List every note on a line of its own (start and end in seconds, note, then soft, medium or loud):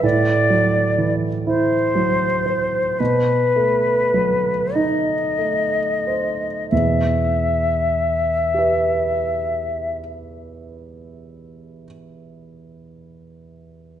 0.03 2.95 A2 soft
0.03 1.15 D5 medium
0.50 1.27 F#3 soft
0.98 1.76 E3 soft
1.47 2.26 E4 soft
1.47 3.01 C5 medium
1.95 2.78 F#3 soft
2.46 2.99 C5 soft
2.99 6.68 B2 soft
2.99 4.76 B4 medium
3.56 4.50 A3 soft
4.14 5.12 F#3 soft
4.75 5.78 D#4 soft
4.75 6.69 D#5 soft
5.38 6.46 A3 soft
6.07 6.72 C5 soft
6.70 10.00 E2 soft
6.70 10.00 B2 soft
6.70 9.98 E5 soft
8.54 11.82 G4 soft
8.54 11.85 B4 soft
8.58 11.86 E5 soft